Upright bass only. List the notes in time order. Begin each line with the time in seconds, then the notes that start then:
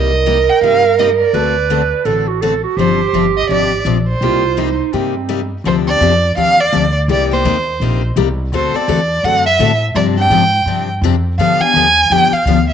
Already playing: C2
0.61 G2
1.33 D2
2.05 A1
2.77 G1
3.13 G1
3.49 G#1
3.85 A#1
4.21 C2
4.93 G2
5.64 D2
6.00 F2
6.37 D#2
6.73 D2
7.08 C2
7.44 D#2
7.80 A#1
8.16 C2
8.52 D2
8.74 muted upright bass stroke
8.88 E2
9.23 F#2
9.59 A2
9.95 G2
10.30 G#2
10.66 G2
11.01 F2
11.38 G2
11.60 muted upright bass stroke
11.74 D#2
12.10 F2
12.32 muted upright bass stroke
12.45 D2